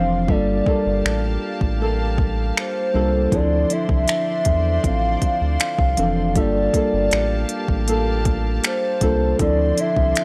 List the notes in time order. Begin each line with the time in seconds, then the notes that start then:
Already playing: F1 D3 E3 F3 C4 D4 C5 D5 F5 C6
0.28 G1 G3 A#3 D4 F4 G4 A4 D5 F5 A5, kick
0.66 A#3 F4 A4, kick
0.86 G1
1.05 A1, finger snap
1.61 A1, kick
1.81 A#3 F4 A4
2.18 kick
2.57 C5, finger snap
2.94 C2 G3 A#3 D4 F4 A4
3.31 D2 D3 F3 C4 D4 E4 G#4 C5 D5 C6, kick, closed hi-hat
3.40 A4
3.70 C4 E4 E5, closed hi-hat
3.89 C2, kick
4.08 finger snap, closed hi-hat
4.45 E2, kick, closed hi-hat
4.84 A1 F3 C4 F5, kick, closed hi-hat
5.22 F5, kick, closed hi-hat
5.41 D2
5.60 finger snap, closed hi-hat
5.79 C2, kick
5.97 F1 E3 F3 C4 D4 A4, closed hi-hat
6.35 G1 G3 A#3 D4 F4 G4 A4 D5 F5 A5, kick, closed hi-hat
6.74 A#3 F4 A4, kick, closed hi-hat
6.93 G1
7.11 A1, finger snap, closed hi-hat
7.49 closed hi-hat
7.68 A1, kick
7.88 A#3 F4 A4, closed hi-hat
8.25 kick, closed hi-hat
8.64 C5, finger snap, closed hi-hat
9.01 C2 G3 A#3 D4 F4 A4, kick, closed hi-hat
9.39 D2 D3 F3 C4 D4 E4 A4 C5 D5 C6, kick, closed hi-hat
9.78 C4 E4 E5, closed hi-hat
9.96 C2, kick
10.15 finger snap, closed hi-hat